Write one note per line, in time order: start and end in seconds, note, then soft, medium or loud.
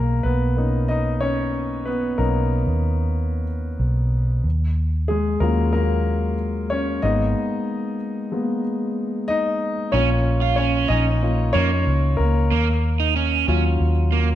0.00 0.21 B1 medium
0.00 0.23 A#3 medium
0.00 0.25 A#4 medium
0.23 2.14 B1 medium
0.23 0.86 B3 medium
0.23 0.91 B4 medium
0.57 1.21 C#4 soft
0.57 0.89 D#4 medium
0.57 1.50 A#4 soft
0.88 1.20 D#4 medium
0.88 1.19 D#5 medium
1.20 1.83 C#4 medium
1.20 1.88 C#5 medium
1.85 2.17 B3 medium
1.85 2.19 B4 medium
2.18 2.64 B1 medium
2.18 3.44 A#3 medium
2.18 2.48 C#4 soft
2.18 2.62 D#4 medium
2.18 3.43 A#4 medium
2.67 3.76 D#2 medium
3.79 4.40 B1 medium
4.44 5.37 D#2 medium
5.08 5.40 G#3 medium
5.08 5.42 G#4 medium
5.40 6.98 D#2 medium
5.40 6.34 F#3 soft
5.40 5.72 A#3 medium
5.40 6.34 C#4 soft
5.40 6.35 F4 medium
5.40 5.71 A#4 medium
5.73 6.67 A#3 medium
5.73 6.73 A#4 medium
6.70 7.02 C#4 medium
6.70 7.04 C#5 medium
7.02 7.33 G#1 medium
7.02 7.96 G#3 medium
7.02 7.96 A#3 soft
7.02 7.96 B3 medium
7.02 9.26 D#4 medium
7.02 9.25 D#5 medium
8.32 8.61 G#3 soft
8.32 8.61 A#3 soft
8.32 8.61 B3 medium
9.28 9.90 D#4 medium
9.28 9.95 D#5 loud
9.92 10.86 A#1 loud
9.92 11.21 A#3 medium
9.92 10.09 C#4 loud
9.92 10.55 C#4 medium
9.92 11.22 F4 medium
9.92 10.55 C#5 medium
10.42 10.57 F4 medium
10.56 10.88 C#4 medium
10.56 10.87 C#5 medium
10.88 11.51 A#1 medium
10.88 11.05 C#4 medium
10.88 11.51 D#4 medium
10.88 11.56 D#5 loud
11.23 11.52 A#3 soft
11.23 11.52 C#4 soft
11.23 11.52 F4 medium
11.53 11.85 F2 medium
11.53 11.70 A#3 medium
11.53 12.16 C#4 medium
11.53 12.20 C#5 loud
11.87 12.17 C#2 medium
12.17 12.49 C#2 medium
12.17 14.09 A#3 medium
12.17 14.08 A#4 medium
12.51 13.44 D#2 medium
12.51 12.67 A#3 loud
13.00 13.15 D#4 medium
13.16 13.47 C#4 medium
13.48 13.78 D#2 medium
13.48 13.91 F#3 medium
13.48 13.64 C#4 medium
13.48 13.91 C#4 medium
13.48 13.92 F4 medium
13.80 14.35 D#2 medium
14.12 14.28 A#3 medium